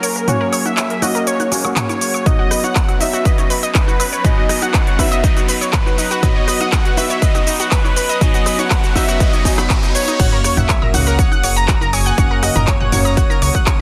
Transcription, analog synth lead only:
0.00 0.29 A#4 medium
0.28 0.67 C#5 loud
0.66 1.04 E5 loud
1.02 1.26 D#5 loud
1.27 1.50 C#5 medium
1.77 2.28 C#5 medium
2.26 2.65 D#5 loud
2.64 3.00 F#5 loud
3.01 3.27 E5 loud
3.25 3.50 D#5 medium
3.75 4.26 B4 medium
4.24 4.64 D#5 loud
4.62 5.01 F#5 loud
4.99 5.23 E5 loud
5.24 5.35 D#5 medium
5.73 6.25 B4 medium
6.23 6.62 D#5 loud
6.61 6.97 F#5 loud
6.97 7.24 E5 loud
7.22 7.47 D#5 medium
7.72 8.23 B4 medium
8.21 8.60 D#5 loud
8.59 8.95 F#5 loud
8.96 9.22 E5 loud
9.21 9.45 D#5 medium
9.95 10.53 C#5 loud
10.57 10.91 E5 loud
10.94 11.58 F#5 loud
11.56 11.95 A#5 loud
11.93 12.17 G#5 loud
12.18 12.44 F#5 loud
12.43 12.69 D#5 loud
12.68 13.67 C#5 medium

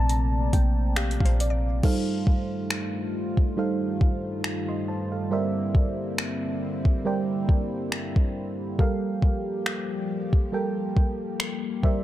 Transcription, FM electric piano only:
0.00 0.88 A#2 medium
0.00 0.88 A3 medium
0.00 0.88 A#3 medium
0.00 0.88 C4 medium
0.00 1.41 D5 medium
0.00 1.85 A5 medium
0.00 0.10 A#5 medium
0.10 0.50 A#5 medium
0.54 0.94 G5 medium
0.97 1.19 F5 medium
1.21 1.39 F5 medium
1.41 1.81 D5 medium
1.83 3.48 G3 medium
1.83 3.49 D#4 medium
1.83 3.49 A4 medium
1.83 3.49 C5 medium
1.83 3.49 F5 loud
3.57 5.22 G3 medium
3.57 5.22 D#4 medium
3.57 4.01 A4 medium
3.57 4.01 C5 medium
3.57 4.02 F5 medium
4.68 4.87 D#5 medium
4.68 4.87 C6 medium
4.88 5.11 C5 medium
4.88 5.10 A5 medium
5.12 5.53 A4 medium
5.12 5.53 F5 medium
5.31 6.96 G3 medium
5.31 6.96 G4 medium
5.31 6.96 A#4 medium
5.31 6.97 C5 medium
5.31 6.97 D5 medium
5.31 6.97 E5 loud
7.05 8.70 G3 medium
7.05 8.70 G4 medium
7.05 8.70 A#4 medium
7.05 8.71 C5 medium
7.05 8.71 D5 medium
7.05 8.71 G5 medium
8.78 10.44 G3 medium
8.78 10.44 G4 medium
8.78 10.44 A4 medium
8.78 10.45 A#4 medium
8.78 10.45 F5 loud
10.52 11.81 G3 medium
10.52 11.82 G4 medium
10.52 11.84 A4 medium
10.52 11.82 A#4 medium
10.52 11.84 G5 medium
11.83 12.04 G3 medium
11.83 12.04 G4 medium
11.83 12.04 A#4 medium
11.83 12.04 C5 medium
11.83 12.04 D5 medium
11.83 12.04 E5 loud

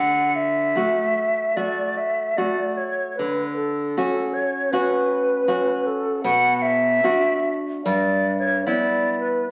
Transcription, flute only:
0.00 0.37 F#5 medium
0.36 1.58 E5 medium
1.57 1.99 D5 soft
1.97 2.39 E5 soft
2.37 2.79 D5 soft
2.77 3.16 C#5 soft
3.17 3.55 B4 soft
3.56 4.35 A4 medium
4.33 4.73 C#5 soft
4.72 5.88 B4 medium
5.86 6.23 A4 soft
6.24 6.64 F#5 medium
6.62 7.56 E5 medium
7.84 8.35 D5 medium
8.39 8.64 C#5 medium
8.65 9.19 D5 medium
9.20 9.48 B4 medium

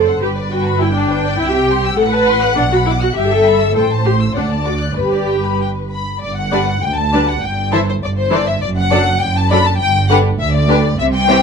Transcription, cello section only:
0.00 0.18 F#2 soft
0.22 1.39 G2 medium
1.40 1.97 C3 medium
1.98 2.56 A2 medium
2.57 3.16 B2 medium
3.17 3.75 G2 medium
3.76 4.37 A2 medium
4.36 4.98 D2 medium
4.98 6.03 G2 soft
6.23 6.73 G2 medium
6.84 7.33 D2 medium
7.43 7.92 G2 medium
8.02 8.52 G2 medium
8.62 9.11 F#2 medium
9.21 9.71 F#2 medium
9.80 10.30 G2 medium
10.39 10.89 D2 medium
10.99 11.43 C3 medium

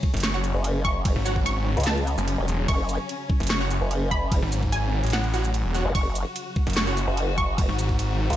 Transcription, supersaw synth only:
0.34 0.44 F#4 medium
0.34 0.43 C#5 medium
0.34 0.43 F#5 loud
1.25 1.36 F#4 medium
1.25 1.36 C#5 medium
1.25 1.36 F#5 loud
3.61 3.70 F#4 medium
3.61 3.70 C#5 medium
3.61 3.70 F#5 loud
5.34 5.44 F#4 medium
5.34 5.44 C#5 medium
5.34 5.44 F#5 loud
5.74 5.85 F#4 medium
5.74 5.85 C#5 medium
5.74 5.85 F#5 medium
6.87 6.97 F#4 medium
6.87 6.97 C#5 medium
6.87 6.97 F#5 loud

